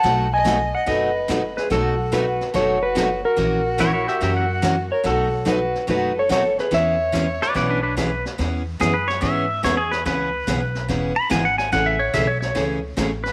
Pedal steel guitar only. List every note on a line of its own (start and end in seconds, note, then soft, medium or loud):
3.80 3.92 E4 medium
3.80 3.92 C#5 medium
3.93 4.06 E4 medium
3.93 4.07 C#5 medium
4.08 4.21 G4 medium
4.08 4.22 E5 medium
4.23 4.35 G4 medium
4.23 4.36 E5 medium
4.37 4.77 F#5 medium
7.42 7.55 B4 medium
7.42 7.56 D5 medium
7.56 7.69 B4 medium
7.56 7.70 D5 medium
7.70 7.82 D4 medium
7.70 7.82 B4 medium
7.83 7.96 D4 medium
7.83 7.96 B4 medium
7.98 8.24 B4 medium
8.81 8.94 G#4 medium
8.94 9.08 B4 medium
9.08 9.22 C#5 medium
9.23 9.63 E5 medium
9.64 9.77 C#5 medium
9.77 9.91 G#4 medium
9.91 10.05 B4 medium
10.06 10.87 B4 loud
11.16 11.30 B5 medium
11.31 11.45 G#5 medium
11.45 11.58 F#5 medium
11.58 11.72 G#5 medium
11.73 11.86 F#5 medium
11.86 12.00 E5 medium
11.99 12.13 C#5 medium
12.14 12.28 E5 medium
12.27 12.40 C#5 medium
12.41 12.64 C#5 loud
13.24 13.32 B4 medium